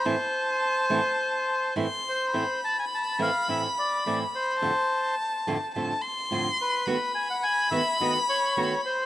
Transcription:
X:1
M:4/4
L:1/16
Q:1/4=106
K:Am
V:1 name="Violin"
a12 c'4 | b16 | a8 a2 c'6 | b16 |]
V:2 name="Bandoneon"
c12 z2 c2- | c2 a ^g a2 f2 e2 d2 d2 c2- | c4 z8 z2 B2- | B2 ^g ^f g2 e2 ^d2 ^c4 =c2 |]
V:3 name="Nylon-string guitar"
[A,,E,A,CE]2 z4 [A,,E,A,CE]2 z4 [A,,E,A,CE]2 z2 | [A,,E,A,CE]2 z4 [A,,E,A,CE]2 [A,,E,A,CE]2 z2 [A,,E,A,CE]2 z2 | [F,,A,,D,A,CF]2 z4 [F,,A,,D,A,CF]2 [F,,A,,D,A,CF]2 z2 [F,,A,,D,A,CF]2 z2 | [^D,A,B,^F]2 z4 [D,A,B,F]2 [D,A,B,F]2 z2 [D,A,B,F]2 z2 |]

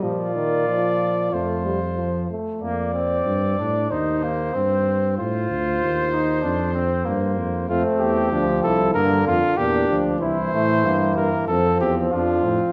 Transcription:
X:1
M:4/4
L:1/8
Q:1/4=94
K:Bb
V:1 name="Trumpet"
d4 c3 z | d4 c4 | c8 | F G2 A B F G z |
c3 B A G F2 |]
V:2 name="Flugelhorn"
F4 F3 z | B, C2 D E B, C2 | F3 E D C B,2 | C2 D =E B, z D2 |
=E A, B,2 C2 D C |]
V:3 name="Trombone" clef=bass
F, E, F,2 A, G, F, A, | z8 | z8 | A,2 F,2 D,2 B,, F, |
=E,4 F,4 |]
V:4 name="Bass trombone" clef=bass
B,,4 F,,3 z | F,,2 G,, A,, E,,2 G,,2 | A,, D,, E,,2 F,,2 G,, F,, | F,, =E,, D,, C,, G,, F,, E,, D,, |
C,, A,, G,, G,, F,, =E,, F,, A,, |]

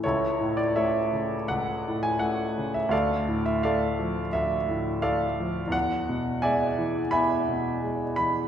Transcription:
X:1
M:4/4
L:1/16
Q:1/4=85
K:A
V:1 name="Grand piano"
[EAc]3 d [Ace]4 f3 g f3 e | [Ad=f]3 e [Adf]4 e4 [Adf]4 | f4 [deg]4 [egb]6 b2 |]
V:2 name="Grand piano" clef=bass
C,,2 A,,2 A,2 C,2 C,,2 A,,2 A,2 C,2 | D,,2 A,,2 A,2 =F,2 D,,2 A,,2 A,2 F,2 | E,,2 B,,2 G,2 E,2 E,,2 B,,2 G,2 E,2 |]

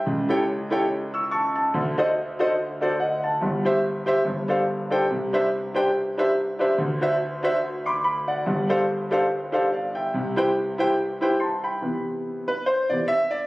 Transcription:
X:1
M:4/4
L:1/8
Q:"Swing" 1/4=143
K:C
V:1 name="Grand piano"
[eg] [EGA^cg] z [EGAcg] z [^c'e'] [ac'] a- | a [D^FAc_e] z [DFAce] z [DFAcd] [e^f] [fa]- | [^fa] [Gce] z [Gce] z [DGAc=f] z [DGAcg] | z [DGBce] z [DGBcg] z [DGBce] z [DGBce] |
z [D^FBce] z [DFBce] z [bc'd'] b [d^f]- | [d^f] [DGAc=f] z [DGAcf] z [DGAcf] [df] [eg]- | [eg] [EGBcg] z [EGBcg] z [EGBcg] [ac'] [gb]- | [gb] z2 B c d e d |]
V:2 name="Grand piano" clef=bass
[^C,,^C,]8 | [D,,D,]8 | [G,,,G,,]4 [G,,,G,,]4 | [C,,C,]8 |
[D,,D,]8 | [G,,,G,,]8 | [C,,C,]8 | [C,E,B,]3 z2 [C,E,B,] z2 |]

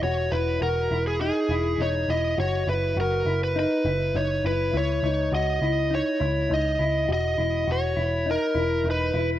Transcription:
X:1
M:4/4
L:1/16
Q:1/4=102
K:Elyd
V:1 name="Electric slide guitar"
c2 B2 A3 G G4 c2 d2 | c2 B2 A3 B B4 c2 B2 | c4 d4 c4 d4 | d4 c4 A4 B3 z |]
V:2 name="Clean electric guitar"
F2 E2 F2 E2 D2 E2 D2 E2 | F2 E2 F2 E2 D2 E2 D2 E2 | E2 D2 F2 E2 D2 E2 D2 E2 | F2 E2 F2 E2 D2 E2 D2 E2 |]
V:3 name="Picked electric bass" clef=bass
E,,,2 E,,,2 E,,,2 E,,,3 z E,,,2 E,,,2 E,,,2 | F,,,2 F,,,2 F,,,2 F,,,3 z F,,,2 F,,,2 F,,,2 | C,,2 C,,2 C,,2 C,,3 z C,,2 C,,2 C,,2 | E,,,2 E,,,2 E,,,2 E,,,3 z E,,,2 E,,,2 E,,,2 |]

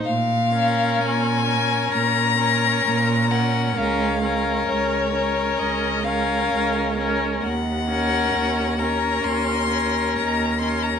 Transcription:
X:1
M:4/4
L:1/16
Q:1/4=66
K:Bbm
V:1 name="Violin"
f4 a4 b6 g2 | f4 d4 e2 f4 z2 | g6 b2 c'4 b2 c' b |]
V:2 name="Violin"
z2 B4 B4 B4 B2 | B2 B4 B4 B4 B2 | z2 B4 B4 B4 B2 |]
V:3 name="Viola"
z2 D4 D4 D4 D2 | D2 D4 D4 D4 D2 | z2 D4 D4 D4 D2 |]
V:4 name="Cello" clef=bass
B,,4 B,,4 B,,4 B,,4 | D,,4 D,,4 D,,4 D,,4 | E,,4 E,,4 E,,4 E,,4 |]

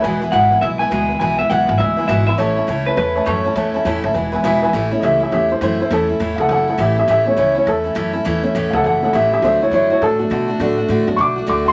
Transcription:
X:1
M:4/4
L:1/8
Q:"Swing" 1/4=204
K:A
V:1 name="Clean electric guitar"
z2 f2 e g3 | g e f2 e2 e e | c2 z B B2 c2 | z8 |
z8 | z8 | z8 | z8 |
z8 | z8 |]
V:2 name="Upright piano"
[Beg] [Beg] [Beg] [Beg] [Beg] [Beg] [Beg] [Beg] | [Beg] [Beg] [Bef] [Beg] [Beg] [Beg] [Beg] [Beb] | [cea] [cea] [cea] [cea] [cea] [cea] [cea] [cea] | [cea] [cea] [cea] [cea] [Beg] [Beg] [Beg] [Beg] |
z2 [=G^de] [Ge] [Ge] [E=c] [Ec] [Ec] | A2 z [A=f^f] [Af] [Af] [=Ge] [Ge] | [=Ge] [Ec] [Ec] [Ec] A4- | A2 z [A=f^f] [Af] [Af] [=Ge] [Ge] |
[=ce] [E^c] [Ec] [Ec] A4- | A2 z2 [c'd'] z d' =c' |]
V:3 name="Upright piano"
z8 | z8 | z8 | z8 |
z [E,A,C]3 [E,A,C] z3 | [E,A,C]8 | z [E,A,C]3 z4 | z [E,A,C]3 z [E,A,C] z2 |
[F,A,D] z4 [F,A,D] z2 | [F,A,D]3 [F,A,D] z4 |]
V:4 name="Steel-string acoustic guitar"
[E,,B,,E,G,B,E] [E,G,B,E] [E,,B,,E,G,B,E] [E,G,B,E] [E,G,B,E] [E,G,B,E] [E,,B,,E,G,B,E] [E,G,B,E] | [E,,B,,E,G,B,E] [E,G,B,E] [E,,B,,E,G,B,E] [E,G,B,E] [E,G,B,E] [E,G,B,E] [E,,B,,E,G,B,E] [E,G,B,E] | [A,,E,A,CE] [A,CE] [A,,E,A,CE] [A,CE] [E,A,CE] [A,CE] [A,,E,A,CE] [A,CE] | [A,,E,A,CE] [A,CE] [A,,E,A,CE] [A,CE] [E,G,B,E] [E,G,B,E] [E,,B,,E,G,B,E] [E,G,B,E] |
[A,,E,A,CE] [A,CE] [A,,E,A,CE] [A,CE] [E,A,CE] [A,CE] [A,,E,A,CE] [A,CE] | [A,,E,A,CE] [A,CE] [A,,E,A,CE] [A,CE] [E,A,CE] [A,CE] [A,,E,A,CE] [A,CE] | [A,,E,A,CE] [A,CE] [A,,E,A,CE] [A,CE] [E,A,CE] [A,CE] [A,,E,A,CE] [A,CE] | [A,,E,A,CE] [A,CE] [A,,E,A,CE] [A,CE] [E,A,CE] [A,CE] [A,,E,A,CE] [A,CE] |
[D,A,DF] [A,DF] [D,A,DF] [A,DF] [D,A,DF] [A,DF] [D,A,DF] [A,DF] | [D,A,DF] [A,DF] [D,A,DF] [A,DF] [D,A,DF] [A,DF] [D,A,DF] [A,DF] |]
V:5 name="Upright bass" clef=bass
E,,,2 G,,,2 B,,,2 D,,2 | B,,,2 B,,, G,,, D,,2 G,,,2 | A,,,2 C,,2 E,,2 F,,2 | E,,2 E,, F,,, E,,,2 E,,,2 |
A,,,2 C,,2 E,,2 F,,2 | E,,2 E,, C,, F,,,2 A,,,2 | A,,,2 C,,2 E,,2 F,,2 | E,,2 E,, C,, F,,,2 A,,,2 |
D,,2 F,,2 A,,2 B,,2 | A,,2 A,, F,, B,,,2 D,,2 |]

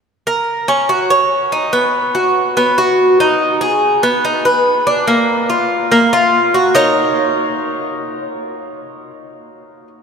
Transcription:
X:1
M:4/4
L:1/8
Q:1/4=143
K:Ebm
V:1 name="Cuban tres"
z B2 D G d2 E | =B,2 ^F2 B, F2 ^D- | ^D A2 C E c2 =D | B,2 F2 B, F2 G |
[EBd]8- | [EBd]8 |]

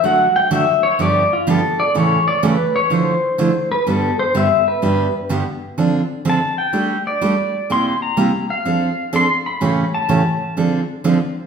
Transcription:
X:1
M:4/4
L:1/8
Q:"Swing" 1/4=125
K:Gmix
V:1 name="Pedal steel guitar"
^f g e _d =d =F A d | ^c d B c =c3 B | A c e B2 z3 | z2 a g2 d3 |
c' _b2 f3 c' =b- | b a3 z4 |]
V:2 name="Steel-string acoustic guitar"
[D,^F,A,D^F] z [D,F,A,DF] z [G,,D,=F,B,DG] z [G,,D,F,B,DG] z | [A,,^C,E,A,^CA] z [A,,C,E,A,CA] z [D,F,A,E] z [D,F,A,E] z | [G,,D,G,B,DG] z [G,,D,G,B,DG] z [G,,D,G,B,DG] z [G,,D,G,B,DG] z | [D,F,CDA] z [D,F,CDA] z [G,A,DG] z [G,A,DG] z |
[C,G,_B,EG] z [C,G,B,EG] z [F,CDA] z [F,CDA] z | [A,,^C,E,A,^CG] z [A,,C,E,A,CG] z [D,F,=CDA] z [D,F,CDA] z |]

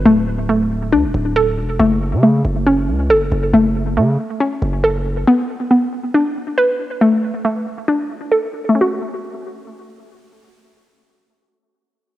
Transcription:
X:1
M:4/4
L:1/16
Q:1/4=138
K:F#m
V:1 name="Synth pluck"
A,4 A,4 D4 A4 | A,4 A,4 C4 A4 | A,4 A,4 C4 A4 | B,4 B,4 D4 B4 |
A,4 A,4 D4 A4 | [A,CF]16- | [A,CF]16 |]
V:2 name="808-style bass" clef=bass
D,,,8 D,, D,,, D,,,4 E,,,2 | F,,,3 C,3 F,,,4 C,,2 F,,,2 F,,,2 | F,,,4 C,2 z4 F,,,6 | z16 |
z16 | z16 | z16 |]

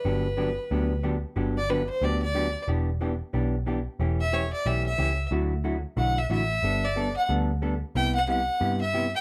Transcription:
X:1
M:4/4
L:1/8
Q:"Swing" 1/4=182
K:G
V:1 name="Fiddle"
B6 z2 | z d B c d d3 | z8 | z e ^c d e e3 |
z4 f e e2- | e d2 f z4 | g f f3 e2 g |]
V:2 name="Hollow-body jazz guitar"
[D,F,B,DG] z [D,F,B,DG] z [D,F,B,DG] z [D,F,B,DG] z | [D,F,B,DG] z [D,F,B,DG] z [D,F,B,DG] z [D,F,B,DG] z | [E,B,DG] z [E,B,DG] z [E,B,DG] z [E,B,DG] z | [E,A,^CG] z [E,A,CG] z [E,A,CG] z [E,A,CG] z |
[D,F,A,EF] z [D,F,A,EF] z [D,F,A,EF] z [D,F,A,EF] z | [G,B,DA] z [G,B,DA] z [G,B,DA] z [G,B,DA] z | [C,G,B,EG] z [C,G,B,EG] z [C,G,B,EG] z [C,G,B,EG] z |]
V:3 name="Picked electric bass" clef=bass
G,,,4 D,,4 | G,,,4 D,,4 | E,,,4 B,,,4 | E,,,4 B,,,2 ^C,,2 |
D,,4 B,,,2 A,,,2 | G,,,4 D,,4 | C,,4 G,,4 |]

